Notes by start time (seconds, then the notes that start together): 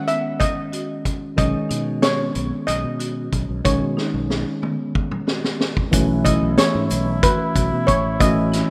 Already playing: D#3 G#3 C#4
0.08 B3 E5, closed hi-hat
0.40 D#5, kick, closed hi-hat
0.72 F#4, closed hi-hat
1.05 kick, closed hi-hat
1.36 B1 D#3 G#3 C#4 D#5, kick, closed hi-hat
1.69 B2 D#4, closed hi-hat
2.02 C#5, snare, closed hi-hat
2.35 B1 B3, closed hi-hat
2.67 B1 D#5, closed hi-hat
2.84 B2
3.00 F#4, closed hi-hat
3.32 B1, kick, closed hi-hat
3.49 B1
3.64 B1 D#3 G#3 C#4 C#5, kick, closed hi-hat
3.81 B2
3.97 D#4, snare
4.14 B1
4.30 snare
4.62 B3, mid tom
4.95 kick
5.11 mid tom
5.27 F#4, snare
5.44 snare
5.60 snare
5.77 kick
5.91 B1 E3 A3 C#4 E4 F#4, kick, closed hi-hat, shaker
6.25 E4 D#5, kick, closed hi-hat
6.41 B1
6.58 C#5, snare, closed hi-hat, shaker
6.75 G#2
6.91 B1, closed hi-hat, shaker
7.23 F#4 B4, kick, closed hi-hat
7.55 B1 F#4, kick, closed hi-hat, shaker
7.72 B2
7.87 A1 C#5, kick, closed hi-hat
8.20 E3 A3 C#4 F#4 D#5, kick, closed hi-hat, shaker
8.52 E4, snare, closed hi-hat